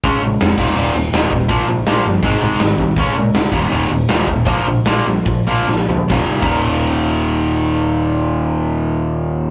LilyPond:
<<
  \new Staff \with { instrumentName = "Overdriven electric guitar" } { \clef bass \time 4/4 \key bes \mixolydian \tempo 4 = 155 <des aes des'>8 <des aes>8 <des aes>8 <ees, bes, ees>8 <ees, bes, ees>8 <ees, bes,>8 <ees, bes, ees>8 <ees, bes,>8 | <bes, f bes>8 <bes, f>8 <bes, f bes>8 <bes, f>8 <aes, ees aes>8 <aes, ees aes>8 <aes, ees>8 <aes, ees>8 | <des aes des'>8 <des aes>8 <des aes>8 <ees, bes, ees>8 <ees, bes, ees>8 <ees, bes,>8 <ees, bes, ees>8 <ees, bes,>8 | <bes, f bes>8 <bes, f>8 <bes, f bes>8 <bes, f>8 <bes, f>8 <bes, f bes>8 <bes, f>8 <bes, f>8 |
<ees, bes, ees>16 r8 <ees, bes, ees>2.~ <ees, bes, ees>16~ | <ees, bes, ees>1 | }
  \new Staff \with { instrumentName = "Picked electric bass" } { \clef bass \time 4/4 \key bes \mixolydian des,8 bes,,8 f,,8 ees,,8 ees,,8 ees,,8 ees,,8 ees,,8 | bes,,8 bes,,8 bes,,8 g,,8 aes,,8 aes,,8 aes,,8 c,8 | des,8 bes,8 d,8 ees,,8 ees,,8 ees,,8 ees,,8 ees,,8 | bes,,8 bes,,8 bes,,8 bes,,8 bes,,8 bes,,8 bes,,8 d,8 |
ees,,16 r8 ees,,2.~ ees,,16~ | ees,,1 | }
  \new DrumStaff \with { instrumentName = "Drums" } \drummode { \time 4/4 <hho bd>4 <hho sn>8 <cymc bd>8 r4 <hho sn>8 bd8 | <hho bd>4 <hho sn>4 <hho bd>4 <hho sn>8 bd8 | <hho bd>4 <hho sn>8 bd8 hho4 <hho sn>8 bd8 | <hho bd>4 <hho sn>4 <hho bd>4 sn8 tomfh8 |
<bd sn>8. <cymc bd>16 r4 r4 r4 | r4 r4 r4 r4 | }
>>